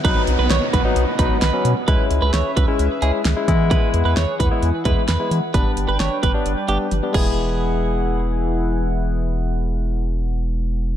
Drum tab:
CC |--------|--------|--------|-------x|
HH |xxxxxxxx|xxxxxxxx|xxxxxxxx|xxxxxxx-|
SD |--o---o-|--o---o-|--o---o-|--o-----|
T1 |--------|--------|--------|------o-|
BD |o--o-o--|o--o---o|o--o-o--|o--o---o|

CC |--------|--------|
HH |--------|--------|
SD |--------|--------|
T1 |--------|--------|
BD |--------|--------|